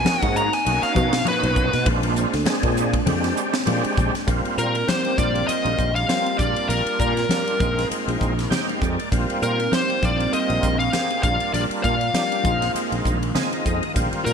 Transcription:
Already playing: A#3 D#4 G#5
0.04 A#3 C#4 D#4 F#4, snare, ride, high conga
0.23 G#2 F#5, kick, ride
0.36 A#5, hi-hat pedal
0.53 G#5, snare, ride
0.65 B1 A#3 C#4 D#4 F#4, ride, muted conga
0.83 F5, snare, ride
0.95 B2, kick, hi-hat pedal, high conga
1.13 snare, ride
1.24 A#2 C#4 D#4 F#4 B4, ride, high conga
1.43 B1, ride
1.56 kick, hi-hat pedal, muted conga
1.73 B2, snare, ride
1.85 A#1 G#3 C4 D4 F4, kick, ride, muted conga
2.03 ride
2.16 hi-hat pedal, muted conga
2.33 D2, snare, ride
2.45 G#3 C4 D4 G#4, snare, ride, high conga
2.63 A#2, kick, ride
2.77 hi-hat pedal
2.94 kick, ride
3.05 F2 G#3 C4 D4 G4, ride, muted conga, high conga, low conga
3.24 snare, ride
3.37 hi-hat pedal
3.53 snare, ride
3.66 A#2 G#3 C4 D4 G4, ride, high conga
3.84 muted fretless electric bass stroke, ride
3.97 A#1, kick, hi-hat pedal, muted conga, low conga
4.14 muted fretless electric bass stroke, snare, ride
4.27 A#1 G3 A#3 C4 D#4 F4, kick, hi-hat pedal, ride, muted conga
4.45 ride
4.57 A#2 A#4, hi-hat pedal, muted conga
4.75 ride
4.87 G3 A#3 C4 G4 C5, snare, hi-hat pedal, ride, high conga
5.05 ride
5.17 A#1 G3 A#3 C4 F4 G4 D5, kick, hi-hat pedal, high conga
5.35 ride
5.47 D#5, muted fretless electric bass stroke, hi-hat pedal, ride, muted conga
5.65 A#1, ride
5.79 A#1, kick, hi-hat pedal
5.95 F5, ride
6.08 G3 A#3 C4 F4, snare, hi-hat pedal, ride, muted conga, high conga
6.26 ride
6.38 A#1 G3 A#3 D4 F4 D5, kick, hi-hat pedal
6.56 ride
6.69 A#1 A#4, hi-hat pedal, ride, muted conga
6.87 ride
7.00 A#2 A#4, kick, hi-hat pedal, muted conga
7.17 snare, ride
7.29 G3 A#3 D4 F4, snare, hi-hat pedal, ride, high conga
7.47 ride
7.59 A#1 G#3 C4 D#4 F4, kick, hi-hat pedal, high conga
7.79 snare, ride
7.91 muted fretless electric bass stroke, hi-hat pedal, ride, muted conga
8.07 A#1, ride
8.21 A#1, kick, hi-hat pedal, high conga
8.39 snare, ride
8.50 G#3 C4 D#4 G4 G5, snare, hi-hat pedal, ride, muted conga, high conga, low conga
8.67 F5, ride
8.81 F2 D5, kick, hi-hat pedal
8.99 ride
9.11 A#1 G3 A#3 C4 D#4 F4, kick, hi-hat pedal, ride, muted conga
9.30 ride
9.42 A#2 A#4, hi-hat pedal, muted conga
9.60 ride
9.71 G3 A#3 C4 G4 C5, snare, hi-hat pedal, ride, high conga
9.90 ride
10.01 A#1 G3 A#3 C4 F4 D5 G5, kick, hi-hat pedal, high conga
10.20 ride
10.33 D#5, muted fretless electric bass stroke, hi-hat pedal, ride, muted conga
10.49 A#1, ride
10.63 A#1, kick, hi-hat pedal
10.79 F5, ride
10.92 A#3 C4 G4 G#4, snare, hi-hat pedal, ride, muted conga, high conga
11.10 ride
11.23 A#1 G3 A#3 D4 F4 F5, kick, hi-hat pedal
11.40 ride
11.53 A#1 D5, hi-hat pedal, ride, muted conga
11.71 ride
11.84 A#2 F5, kick, hi-hat pedal, muted conga
12.01 ride
12.14 G3 A#3 D4 G4, snare, hi-hat pedal, ride, high conga
12.32 ride
12.43 A#1 D#3 G#3 C4 D#4 F4, kick, hi-hat pedal, high conga
12.62 snare, ride
12.74 muted fretless electric bass stroke, hi-hat pedal, ride, muted conga
12.92 A#1, ride
13.05 A#1, kick, hi-hat pedal, high conga
13.23 ride
13.34 G#3 C4 D#4 F4 G#5, snare, hi-hat pedal, ride, muted conga, high conga, low conga
13.51 D#5, ride
13.66 F2, kick, hi-hat pedal
13.83 ride
13.94 A#1 G3 A#3 C4 F4, kick, hi-hat pedal, ride, muted conga
14.13 muted fretless electric bass stroke, ride
14.25 A#2 A#4, hi-hat pedal, muted conga

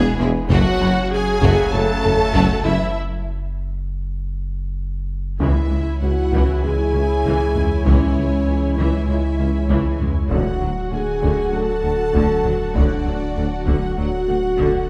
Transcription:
Already playing: E1 B2 G#3 B3 E4 G#4 B4 G#5
0.19 E1 E2 G#3 E4
0.50 F#1 F#2 C#3 F#3 A3 C#4 F#4 C#5 F#5, taiko
0.81 F#1 F#2 A3 C#4, taiko rim
1.11 G#4 G#5
1.42 F#1 F#2 A3 F#4, taiko
1.73 F#1 F#2 A3 C#4 A4 A5
2.04 F#1 F#2 A3, taiko low
2.34 F#1 F#2 A3 F#4, taiko
2.64 F#1 F#2 E3 A3 C#4 E4 E5, taiko rim
5.40 C#2 E3 G#3 E4 C#5 E5 G#5, taiko
5.71 C#2 G#3
6.02 C#2 C#4 F#4 F#5
6.32 C#2 E3, taiko
6.62 C#2 E3 G#3 G#4 G#5
6.94 C#2 C#4
7.24 C#2 E3, taiko
7.55 C#2 G#3, taiko low
7.85 C#2 E3 G#3 C#4 C#5, taiko
8.16 C#2 G#3
8.47 C#2 C#4
8.77 C#2 E3 E4 E5, taiko
9.08 C#2 E3 G#3 E4 E5
9.38 C#2 C#4
9.69 C#2 E3, taiko
9.99 C#2 G#3, taiko low
10.30 D1 D2 D3 F#3 F#4 F#5, taiko
10.60 D2 F#3
10.91 D2 A3 G#4 G#5
11.22 D2 D3, taiko
11.52 D2 D3 F#3 A4 A5
11.83 D2 A3
12.14 D2 D3, taiko
12.44 D2 F#3, taiko low
12.75 D2 D3 F#3 D4 D5, taiko
13.05 D2 F#3
13.36 D2 A3
13.67 D2 D3 F#4 F#5, taiko
13.96 D2 D3 F#3 F#4 F#5
14.28 D2 A3
14.58 D2 D3, taiko

